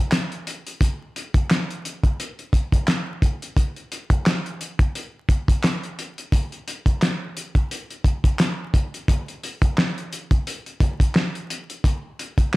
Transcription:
0.12 snare loud
0.12 clap medium
0.12 closed hi-hat medium
0.32 closed hi-hat soft
0.47 closed hi-hat medium
0.67 closed hi-hat soft
0.81 kick loud
0.81 closed hi-hat medium
1.16 closed hi-hat medium
1.34 kick loud
1.34 closed hi-hat medium
1.50 snare loud
1.50 clap medium
1.50 closed hi-hat medium
1.70 closed hi-hat soft
1.85 closed hi-hat medium
2.03 kick loud
2.03 closed hi-hat soft
2.20 closed hi-hat medium
2.39 closed hi-hat soft
2.53 kick loud
2.53 closed hi-hat medium
2.72 kick medium
2.72 closed hi-hat medium
2.88 snare loud
2.88 clap medium
2.88 closed hi-hat medium
3.22 kick loud
3.22 closed hi-hat medium
3.42 closed hi-hat medium
3.57 kick loud
3.57 closed hi-hat medium
3.76 closed hi-hat soft
3.92 closed hi-hat medium
4.10 kick medium
4.10 closed hi-hat medium
4.26 snare loud
4.26 clap medium
4.26 closed hi-hat medium
4.46 closed hi-hat soft
4.61 closed hi-hat medium
4.79 kick loud
4.79 closed hi-hat soft
4.95 closed hi-hat medium
5.29 kick medium
5.29 closed hi-hat medium
5.48 kick medium
5.48 closed hi-hat medium
5.64 snare loud
5.64 clap medium
5.64 closed hi-hat medium
5.83 closed hi-hat soft
5.99 closed hi-hat medium
6.18 closed hi-hat soft
6.32 kick loud
6.32 closed hi-hat medium
6.52 closed hi-hat soft
6.68 closed hi-hat medium
6.86 kick medium
6.86 closed hi-hat medium
7.02 snare loud
7.02 clap medium
7.02 closed hi-hat medium
7.37 closed hi-hat medium
7.55 kick loud
7.55 closed hi-hat soft
7.71 closed hi-hat medium
7.90 closed hi-hat soft
8.04 kick medium
8.04 closed hi-hat medium
8.24 kick medium
8.24 closed hi-hat medium
8.39 snare loud
8.39 clap medium
8.39 closed hi-hat medium
8.74 kick medium
8.74 closed hi-hat medium
8.94 closed hi-hat soft
9.08 kick loud
9.08 closed hi-hat medium
9.28 closed hi-hat soft
9.43 closed hi-hat medium
9.62 kick loud
9.62 closed hi-hat medium
9.78 snare loud
9.78 clap medium
9.98 closed hi-hat soft
10.13 closed hi-hat medium
10.31 kick loud
10.31 closed hi-hat soft
10.47 closed hi-hat medium
10.66 closed hi-hat soft
10.80 kick loud
10.80 closed hi-hat medium
11.00 kick medium
11.00 closed hi-hat medium
11.15 snare loud
11.15 clap medium
11.35 closed hi-hat soft
11.50 closed hi-hat medium
11.70 closed hi-hat medium
11.84 kick loud
11.84 closed hi-hat medium
12.19 closed hi-hat medium
12.38 kick loud
12.38 closed hi-hat medium

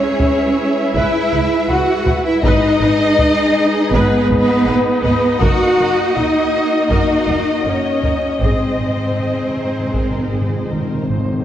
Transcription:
0.00 2.42 G#3 medium
0.00 0.92 C#4 medium
0.00 0.95 C#4 medium
0.00 2.44 E4 medium
0.00 2.42 G#4 medium
0.00 5.41 B4 medium
0.00 0.92 C#5 medium
0.00 0.94 C#5 medium
0.00 2.39 E5 medium
0.20 taiko low medium
0.94 1.03 C#2 medium
0.94 1.68 E4 medium
0.94 1.29 B4 medium
0.94 1.69 E5 medium
0.94 1.70 E5 medium
0.94 taiko medium
1.31 1.41 C#2 medium
1.31 1.39 B4 medium
1.31 taiko low soft
1.69 1.78 C#2 medium
1.69 2.25 F#4 medium
1.69 2.24 F#4 medium
1.69 1.77 B4 medium
1.69 2.25 F#5 medium
2.06 2.15 C#2 medium
2.06 2.14 B4 medium
2.06 taiko low medium
2.25 2.44 E4 medium
2.25 2.43 E5 medium
2.43 2.52 G#1 medium
2.43 5.37 G#3 medium
2.43 8.40 D#4 medium
2.43 3.90 D#4 loud
2.43 3.90 D#4 medium
2.43 5.37 G#4 medium
2.43 2.79 B4 medium
2.43 3.92 D#5 loud
2.43 3.90 D#5 loud
2.43 8.38 D#5 medium
2.43 taiko loud
2.81 2.89 G#1 medium
2.81 2.90 B4 medium
3.19 taiko low medium
3.91 3.99 G#1 medium
3.91 5.38 B3 loud
3.91 5.25 B3 medium
3.91 5.38 B4 loud
3.91 5.41 B4 medium
3.91 4.27 B4 medium
3.91 taiko medium
4.29 4.37 G#1 medium
4.29 4.37 B4 medium
4.29 taiko low soft
4.66 4.74 G#1 medium
4.66 4.74 B4 medium
5.03 5.11 G#1 medium
5.03 5.11 B4 medium
5.03 taiko low soft
5.40 5.50 F#1 loud
5.40 8.41 A#3 medium
5.40 8.41 F#4 medium
5.40 6.14 F#4 loud
5.40 6.15 F#4 medium
5.40 5.76 A#4 medium
5.40 11.44 D#5 medium
5.40 6.14 F#5 loud
5.40 6.14 F#5 medium
5.40 taiko loud
5.78 5.86 F#1 medium
5.78 5.86 A#4 medium
6.16 6.89 D#4 medium
6.16 6.90 D#4 medium
6.16 6.90 D#5 medium
6.16 6.89 D#5 medium
6.16 taiko low medium
6.89 6.98 F#1 medium
6.89 7.64 D#4 medium
6.89 7.65 D#4 medium
6.89 7.25 A#4 medium
6.89 7.64 D#5 medium
6.89 7.65 D#5 medium
6.89 taiko medium
7.27 7.35 F#1 medium
7.27 7.35 A#4 medium
7.27 taiko low soft
7.65 7.73 F#1 soft
7.65 8.40 C#4 medium
7.65 8.42 C#4 medium
7.65 7.73 A#4 soft
7.65 8.42 C#5 medium
8.03 8.11 F#1 soft
8.03 8.12 A#4 soft
8.03 taiko low soft
8.40 8.48 G#1 soft
8.40 11.44 G#3 medium
8.40 11.09 C4 medium
8.40 11.05 C4 soft
8.40 11.43 D#4 soft
8.40 11.44 G#4 medium
8.40 8.77 G#4 soft
8.40 11.05 C5 soft
8.40 11.05 C5 medium
8.40 9.09 D#5 medium
8.40 taiko medium
8.49 8.55 G#2 soft
8.57 8.63 G#2 soft
8.65 8.72 G#2 soft
8.73 8.79 G#2 soft
8.79 8.87 G#1 soft
8.79 8.87 G#2 soft
8.79 8.88 G#4 soft
8.89 8.95 G#2 soft
8.96 9.03 G#2 soft
9.04 9.09 G#2 soft
9.11 9.18 G#2 soft
9.18 9.25 G#2 soft
9.18 9.53 D#5 soft
9.26 9.32 G#2 soft
9.34 9.40 G#2 soft
9.41 9.47 G#2 soft
9.49 9.55 G#2 soft
9.55 9.63 G#2 soft
9.55 9.93 C5 soft
9.64 9.70 G#2 soft
9.71 9.78 G#2 soft
9.79 9.85 G#2 soft
9.86 9.93 G#2 soft
9.94 10.02 G#1 soft
9.94 10.01 G#2 soft
9.94 10.33 A#4 soft
9.94 taiko medium
10.02 10.09 G#2 soft
10.10 10.17 G#2 medium
10.18 10.24 G#2 soft
10.26 10.32 G#2 soft
10.31 10.40 G#1 soft
10.31 10.40 G#2 medium
10.31 10.70 G#4 soft
10.41 10.47 G#2 medium
10.48 10.55 G#2 soft
10.56 10.63 G#2 medium
10.64 10.71 G#2 medium
10.70 10.79 G#1 soft
10.70 10.78 G#2 medium
10.70 11.08 A#4 soft
10.79 10.86 G#2 medium
10.87 10.93 G#2 medium
10.94 11.01 G#2 medium
11.02 11.08 G#2 medium
11.07 11.17 G#1 soft
11.07 11.16 G#2 medium
11.07 11.44 C5 soft
11.17 11.24 G#2 medium
11.25 11.31 G#2 medium
11.32 11.39 G#2 medium
11.40 11.44 G#2 medium

